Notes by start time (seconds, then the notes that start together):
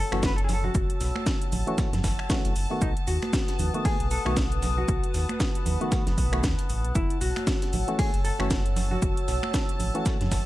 Already playing: A4 C#5 F#5 A5 E6
0.12 F#1 E3 A3 C#4 F#4, finger snap
0.23 B4, kick, snare, closed hi-hat, shaker
0.36 A4, closed hi-hat
0.44 G#4
0.49 snare, open hi-hat, low conga, shaker
0.53 A4
0.64 F#4, low conga
0.75 F#1, kick, closed hi-hat, shaker
0.90 closed hi-hat
1.01 B1, snare, open hi-hat, shaker
1.15 finger snap, high conga
1.26 kick, snare, closed hi-hat, shaker
1.42 closed hi-hat
1.52 A1, open hi-hat, low conga, shaker
1.67 E3 A3 C#4 F#4, closed hi-hat
1.78 kick, snare, closed hi-hat, high conga, shaker
1.93 F#2, snare, closed hi-hat, low conga
2.04 F#1, kick, snare, open hi-hat, shaker
2.19 finger snap
2.29 E3 A3 C#4 F#4, kick, snare, closed hi-hat, shaker
2.45 F#1, closed hi-hat
2.56 F#1, open hi-hat, shaker
2.70 D#3 A3 B3 F#4
2.82 B1 D#4 B4 A5 D#6, kick, closed hi-hat, shaker
2.97 closed hi-hat
3.07 D#2 F#4, open hi-hat, shaker
3.22 finger snap, closed hi-hat, high conga
3.33 kick, snare, closed hi-hat, shaker
3.48 snare, closed hi-hat
3.59 D#2, open hi-hat, low conga, shaker
3.74 D#3 A3 B3 F#4, closed hi-hat
3.85 G#4, kick, closed hi-hat, open hi-hat, high conga
4.00 B1, closed hi-hat
4.11 A4, open hi-hat, shaker
4.25 B1 D#3 A3 B3 F#4, finger snap
4.37 kick, snare, closed hi-hat, shaker
4.52 closed hi-hat
4.62 snare, open hi-hat, low conga, shaker
4.78 F#4, low conga
4.88 B1 B5, kick, closed hi-hat, shaker
5.04 closed hi-hat
5.14 D#2, snare, open hi-hat, shaker
5.29 finger snap, closed hi-hat, high conga
5.40 kick, snare, closed hi-hat, shaker
5.55 closed hi-hat
5.66 D#2, open hi-hat, low conga, shaker
5.81 D#3 A3 B3 F#4, closed hi-hat
5.91 kick, snare, closed hi-hat, high conga, shaker
6.06 F#1, snare, closed hi-hat, low conga
6.18 B1, kick, open hi-hat, shaker
6.32 D#3 A3 B3 F#4, finger snap, closed hi-hat
6.44 D#2, kick, snare, closed hi-hat, shaker
6.59 closed hi-hat
6.69 A1, open hi-hat, shaker
6.85 B1, closed hi-hat
6.95 F#1 E4 C#5 A5 E6, kick, closed hi-hat, shaker
7.10 closed hi-hat
7.21 B1 F#4, open hi-hat, shaker
7.36 finger snap, closed hi-hat, high conga
7.47 kick, snare, closed hi-hat, shaker
7.62 snare, closed hi-hat
7.73 A1, open hi-hat, low conga, shaker
7.88 E3 A3 C#4 F#4, closed hi-hat
7.99 G#4, kick, closed hi-hat, open hi-hat, high conga
8.14 F#1, closed hi-hat
8.24 A4, open hi-hat, shaker
8.39 F#1 E3 A3 C#4 F#4, finger snap
8.51 kick, snare, closed hi-hat, shaker
8.66 closed hi-hat
8.76 snare, open hi-hat, low conga, shaker
8.91 F#4, low conga
9.02 F#1, kick, closed hi-hat, shaker
9.17 closed hi-hat
9.28 B1, snare, open hi-hat, shaker
9.43 finger snap, high conga
9.54 kick, snare, closed hi-hat, shaker
9.69 closed hi-hat
9.80 A1, open hi-hat, low conga, shaker
9.94 E3 A3 C#4 F#4, closed hi-hat
10.06 kick, snare, closed hi-hat, high conga, shaker
10.21 F#2, snare, closed hi-hat, low conga
10.32 F#1, kick, snare, open hi-hat, shaker